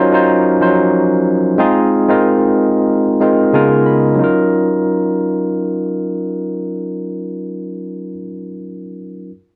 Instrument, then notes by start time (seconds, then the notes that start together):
tine electric piano
Already playing: F#3 C#4 D#4 F4 A#4 C5
0.12 F#3 C#4 D#4 F4 C5
0.60 F3 C#4 D#4 F4 C5
0.67 F#3
1.58 G#3 C4 D#4 F4 G#4
2.08 G#3 C4 D#4 F4 A#4
3.20 G#3 C4 D#4 F4 A#4 F5
3.53 C#3 G#3 B3 D#4 F4 A#4 G#5
3.86 B5
4.15 F#3 C#4
4.19 D#4 F4
4.24 A#4